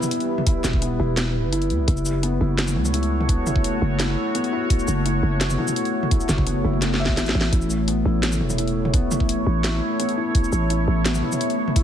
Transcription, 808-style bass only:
0.64 E1
1.00 E1
1.35 D1
1.44 G1
1.70 E2
1.79 B1
1.88 F#1
2.41 F#1
2.76 C#2
3.47 F#1
3.82 F#1
4.88 F#1
5.23 F#1
6.29 F#1
6.65 F#1
7.17 A1
7.35 A1
7.53 A1
8.05 A1
8.41 E1
9.11 A1
9.47 A1
10.52 A1
10.88 A1

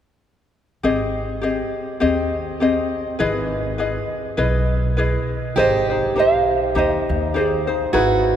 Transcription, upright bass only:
0.84 G#1
2.02 D#2
3.20 G#1
4.38 B1
5.57 G#1
6.75 D#2
7.09 D#2
7.94 G#1

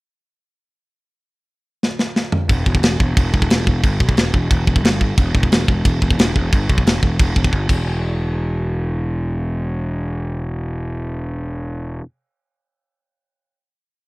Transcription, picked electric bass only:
2.49 E1
2.66 E1
2.82 E1
2.99 E1
3.17 E1
3.33 E1
3.51 E1
3.67 E1
3.84 G1
4.00 B1
4.17 E1
4.34 E1
4.51 E1
4.67 E1
4.83 G1
5.18 E1
5.35 E1
5.51 E1
5.68 E1
5.85 E1
6.02 E1
6.18 E1
6.35 E1
6.53 G1
6.69 B1
6.85 E1
7.03 E1
7.19 E1
7.36 E1
7.53 G1
7.69 E1

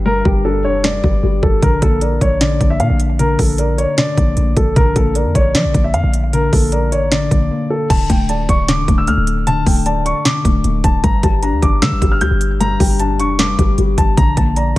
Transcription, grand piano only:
0.06 A#4
0.25 G4
0.45 A4
0.64 C#5
0.84 D5
1.43 A4
1.62 A#4
1.82 A4
2.02 A#4
2.21 C#5
2.41 D5
2.70 E5
2.80 F5
3.19 A#4
3.39 A4
3.59 A#4
3.78 C#5
3.98 D5
4.57 A4
4.76 A#4
4.96 A4
5.16 A#4
5.35 C#5
5.55 D5
5.84 E5
5.94 F5
6.33 A#4
6.53 A4
6.72 A#4
6.92 C#5
7.12 D5
7.70 A4
7.90 A5
8.10 G5
8.29 A5
8.49 C#6
8.69 D6
8.98 E6
9.08 F6
9.47 A5
9.66 G5
9.86 A5
10.06 C#6
10.25 D6
10.84 A5
11.04 A#5
11.23 A5
11.43 A#5
11.62 D6
11.82 E6
12.11 F6
12.21 G6
12.60 A#5
12.80 G5
13.00 A5
13.19 C#6
13.39 D6
13.98 A5
14.17 A#5
14.37 A5
14.57 A#5

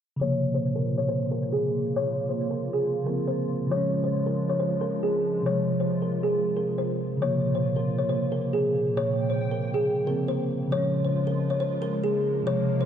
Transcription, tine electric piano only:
0.16 C#3 F3
0.23 C3 A#3
3.04 C#3 F3 A#3
3.09 C4
3.67 C#3 F3
3.73 G#3 C#4
5.42 C3 F3
5.49 G#3
7.17 C#3 F3
7.24 C3 A#3
10.04 C#3 F3 A#3
10.09 C4
10.68 C#3 F3
10.74 G#3 C#4
12.43 C3 F3
12.50 G#3

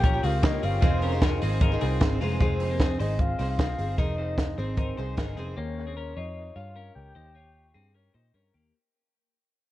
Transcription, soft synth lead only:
Already playing: G5
0.24 F5
0.44 D#5
0.64 F5
2.42 C5
3.01 D#5
3.21 F5
3.50 F5
3.98 D#5
4.58 C5
4.78 C5
5.56 C#5
6.16 D#5
6.56 F5
6.95 G5

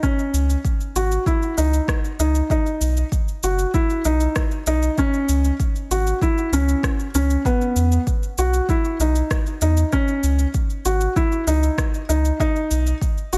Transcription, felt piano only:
0.03 C#4
0.96 F#4
1.27 E4
1.58 D#4
2.20 D#4
2.51 D#4
3.44 F#4
3.74 E4
4.05 D#4
4.67 D#4
4.99 C#4
5.91 F#4
6.22 E4
6.53 C#4
7.15 C#4
7.46 B3
8.39 F#4
8.69 E4
9.01 D#4
9.62 D#4
9.93 C#4
10.85 F#4
11.16 E4
11.47 D#4
12.09 D#4
12.40 D#4
13.33 F#4

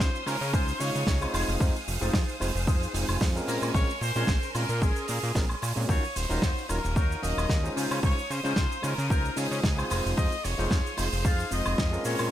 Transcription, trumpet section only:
Already playing: C5
0.27 A#4
0.54 C5
0.79 C#5
3.74 C#5
4.01 C5
4.55 A#4
4.81 G#4
5.89 C#5
6.16 C5
6.69 A#4
6.96 A#4
7.23 D#5
8.04 C#5
8.30 C5
8.84 A#4
9.11 A#4
9.37 G#4
10.17 D#5
10.44 C#5
10.97 C5
11.25 F5
11.52 D#5
12.05 C#5

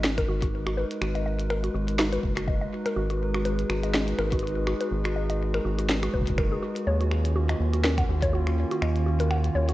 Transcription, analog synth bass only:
Already playing: G#1
0.28 G#1
1.02 G#1
1.75 G#1
2.23 F#1
2.97 G#1
3.70 G#1
4.19 G#1
4.92 G#1
5.65 G#1
6.14 F#1
6.87 D#2
7.60 D#2
8.09 D#2
8.82 D#2
9.55 D#2

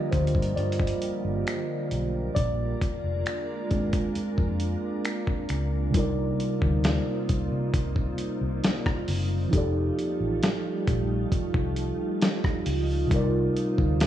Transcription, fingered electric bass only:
0.13 D2
0.35 G2
0.57 G2
1.24 G1
1.92 B1
2.36 A#1
3.04 F1
3.71 G#1
4.16 muted fingered electric bass stroke
4.38 F2
5.50 C#2
5.95 C2
6.62 D2
7.29 C2
7.52 C3
7.74 C2
8.41 C2
9.08 F#1
9.53 F1
10.20 A1
10.88 A#1
11.32 muted fingered electric bass stroke
11.54 C2
12.66 C#2
13.11 C2
13.78 D2

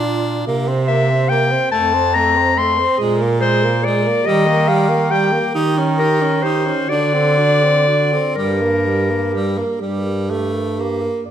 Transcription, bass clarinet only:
Already playing: A#2
0.46 C3
1.72 F2
2.98 A#2
4.25 D#3
5.55 D#3
6.88 D3
8.37 G2
9.79 G2
11.25 G2

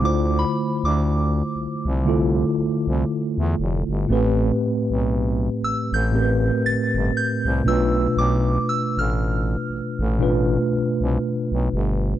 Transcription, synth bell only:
0.05 D6
0.39 B5
0.85 D6
5.64 E6
5.94 G6
6.66 A6
7.17 G6
7.68 E6
8.18 D6
8.69 E6
8.99 F6

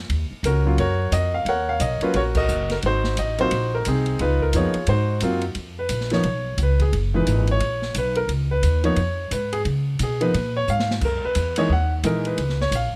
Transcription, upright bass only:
0.09 D#2
0.31 muted upright bass stroke
0.43 C#2
0.78 F#2
1.12 F2
1.45 D#2
1.80 B1
2.01 muted upright bass stroke
2.14 A#1
2.49 F#1
2.83 G#1
3.17 A1
3.51 A#1
3.86 C2
4.20 C#2
4.53 F2
4.75 muted upright bass stroke
4.87 G#2
5.22 F#2
5.55 F2
5.89 A#1
6.24 B1
6.58 C#2
6.93 F#1
7.27 G#1
7.60 A#1
7.95 B1
8.28 C#2
8.63 D#2
8.96 F2
9.31 G#2
9.65 C#3
9.99 B2
10.34 A#2
10.68 G#2
11.01 F#2
11.23 muted upright bass stroke
11.35 E2
11.69 D#2
12.03 A#1
12.38 C#2
12.71 A#1

